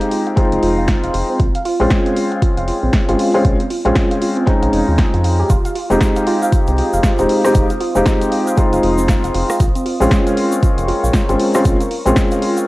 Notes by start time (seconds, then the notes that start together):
Already playing: G#3 C4 D#4 G4
0.01 F5, closed hi-hat
0.11 F4, open hi-hat
0.27 F5, closed hi-hat
0.36 G#3 C4 D#4 F4, kick, closed hi-hat
0.52 F1 C4, closed hi-hat
0.63 F1 F4, open hi-hat
0.78 F5
0.88 F4, kick, snare, closed hi-hat
1.04 F1 F5, closed hi-hat
1.14 F1 F4, open hi-hat
1.29 C4
1.40 A#1 F4, kick, closed hi-hat
1.55 F5, closed hi-hat
1.65 F4, open hi-hat
1.80 A#1 G#3 C4 C#4 F4 F5
1.90 kick, snare, closed hi-hat
2.06 C4, closed hi-hat
2.17 F4, open hi-hat
2.32 F5, closed hi-hat
2.42 F4, kick, closed hi-hat
2.57 F1 F5, closed hi-hat
2.68 F4, open hi-hat
2.83 A#1 C4
2.93 F4, kick, snare, closed hi-hat
3.08 G#1 G#3 C4 C#4 F4 F5, closed hi-hat
3.19 F4, open hi-hat
3.34 G#3 C4 C#4 F4 F5
3.45 A#1, kick, closed hi-hat
3.60 C4, closed hi-hat
3.70 F4, open hi-hat
3.85 A#1 G#3 C4 C#4 F4 F5, closed hi-hat
3.95 F4, kick, snare, closed hi-hat
4.11 F5, closed hi-hat
4.22 F4, open hi-hat
4.37 C4, closed hi-hat
4.46 G#3 C4 C#4 D#4 F4, kick, snare, closed hi-hat
4.63 A#1 F5, closed hi-hat
4.73 F1 D#4, open hi-hat
4.88 D#2 F4
4.98 F4, kick, snare, closed hi-hat
5.14 F2 F4, closed hi-hat
5.24 F4, open hi-hat
5.39 G4
5.50 F1 F4 C5 F5 C6 D#6, kick, closed hi-hat, shaker
5.65 F5, closed hi-hat, shaker
5.75 F4, open hi-hat
5.90 F1 G#3 C4 D#4 G4, shaker
6.01 F4, kick, snare, closed hi-hat, shaker
6.16 F5, closed hi-hat, shaker
6.27 F4, open hi-hat
6.42 F5, closed hi-hat, shaker
6.52 F4, kick, closed hi-hat, shaker
6.67 C2 C4, closed hi-hat, shaker
6.78 F4, open hi-hat
6.93 F1 F5, shaker
7.03 F4, kick, snare, closed hi-hat, shaker
7.19 D#1 G#3 C4 D#4 G4 F5, closed hi-hat, shaker
7.29 F4, open hi-hat
7.44 G#3 C4 D#4 G4, cross-stick, shaker
7.55 F1 F4, kick, closed hi-hat, shaker
7.70 F5, closed hi-hat, shaker
7.81 F4, open hi-hat
7.95 F1 G#3 C4 D#4 G4 F5, shaker
8.06 F4, kick, snare, closed hi-hat, shaker
8.21 C4, closed hi-hat, shaker
8.32 F4, open hi-hat
8.47 F5, closed hi-hat, shaker
8.57 G#3 C4 D#4 F4, kick, closed hi-hat, shaker
8.73 F1 F5, closed hi-hat, shaker
8.83 F1 F4, open hi-hat
8.98 C4, shaker
9.08 F4, kick, snare, closed hi-hat, shaker
9.24 F1 F5, closed hi-hat, shaker
9.34 F1 F4, open hi-hat
9.50 F5, cross-stick, shaker
9.60 A#1 F4 A#4 C#6, kick, closed hi-hat, shaker
9.75 C4, closed hi-hat, shaker
9.86 F4, open hi-hat
10.00 A#1 G#3 C4 C#4 F4 F5, shaker
10.11 F4, kick, snare, closed hi-hat, shaker
10.27 F5, closed hi-hat, shaker
10.37 F4, open hi-hat
10.52 C4, closed hi-hat, shaker
10.63 F4, kick, closed hi-hat, shaker
10.78 F1 F5, closed hi-hat, shaker
10.88 F4, open hi-hat
11.04 A#1 F5, shaker
11.13 F4, kick, snare, closed hi-hat, shaker
11.29 G#1 G#3 C4 C#4 F4, closed hi-hat, shaker
11.40 F4, open hi-hat
11.54 G#3 C4 C#4 F4 F5, cross-stick, shaker
11.65 A#1 F4, kick, closed hi-hat, shaker
11.80 F5, closed hi-hat, shaker
11.91 F4, open hi-hat
12.05 A#1 G#3 C4 C#4 F4, closed hi-hat, shaker
12.16 F4, kick, snare, closed hi-hat, shaker
12.31 F5, closed hi-hat, shaker
12.42 F4, open hi-hat
12.57 F5, closed hi-hat, shaker